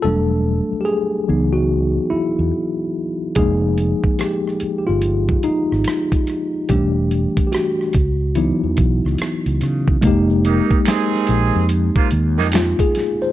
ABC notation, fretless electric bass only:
X:1
M:4/4
L:1/16
Q:"Swing 16ths" 1/4=72
K:Dblyd
V:1 name="Fretless electric bass" clef=bass
=E,,,3 z3 D,,4 z _F,, z4 | F,,,3 z4 G,,,3 z A,,, z4 | =E,,,3 z3 D,,3 _F,, _C,, D,, z D,, D,2 | F,,,3 z3 B,,, F,,2 z E,, F,,2 z3 |]